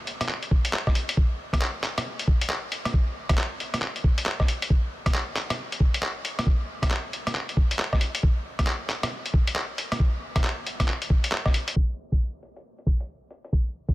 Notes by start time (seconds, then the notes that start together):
0.07 closed hi-hat
0.21 cross-stick, closed hi-hat
0.29 clap
0.43 closed hi-hat
0.51 kick
0.65 closed hi-hat
0.73 clap
0.87 kick, cross-stick
0.95 closed hi-hat
1.09 closed hi-hat
1.17 kick
1.53 kick, cross-stick, closed hi-hat
1.62 clap
1.84 clap, closed hi-hat
1.98 cross-stick, closed hi-hat
2.19 closed hi-hat
2.28 kick
2.41 closed hi-hat
2.50 clap
2.72 closed hi-hat
2.85 cross-stick, closed hi-hat
2.94 kick
3.29 kick, cross-stick, closed hi-hat
3.38 clap
3.60 closed hi-hat
3.74 cross-stick, closed hi-hat
3.82 clap
3.96 closed hi-hat
4.04 kick
4.18 closed hi-hat
4.26 clap
4.40 kick, cross-stick
4.48 closed hi-hat
4.62 closed hi-hat
4.70 kick
5.06 kick, cross-stick, closed hi-hat
5.15 clap
5.37 clap, closed hi-hat
5.50 cross-stick, closed hi-hat
5.72 closed hi-hat
5.80 kick
5.94 closed hi-hat
6.03 clap
6.25 closed hi-hat
6.39 cross-stick, closed hi-hat
6.46 kick
6.82 kick, cross-stick, closed hi-hat
6.91 clap
7.13 closed hi-hat
7.27 cross-stick, closed hi-hat
7.35 clap
7.49 closed hi-hat
7.57 kick
7.71 closed hi-hat
7.79 clap
7.93 kick, cross-stick
8.01 closed hi-hat
8.15 closed hi-hat
8.23 kick
8.59 kick, cross-stick, closed hi-hat
8.67 clap
8.90 clap, closed hi-hat
9.03 cross-stick, closed hi-hat
9.26 closed hi-hat
9.34 kick
9.47 closed hi-hat
9.56 clap
9.78 closed hi-hat
9.92 cross-stick, closed hi-hat
10.00 kick
10.36 kick, cross-stick, closed hi-hat
10.44 clap
10.66 closed hi-hat
10.80 kick, cross-stick, closed hi-hat
10.88 clap
11.02 closed hi-hat
11.10 kick
11.24 closed hi-hat
11.32 clap
11.46 kick, cross-stick
11.54 closed hi-hat
11.68 closed hi-hat
11.76 kick
12.12 kick, closed hi-hat
12.43 closed hi-hat
12.56 closed hi-hat
12.78 closed hi-hat
12.87 kick
13.00 closed hi-hat
13.31 closed hi-hat
13.44 closed hi-hat
13.53 kick
13.89 kick, closed hi-hat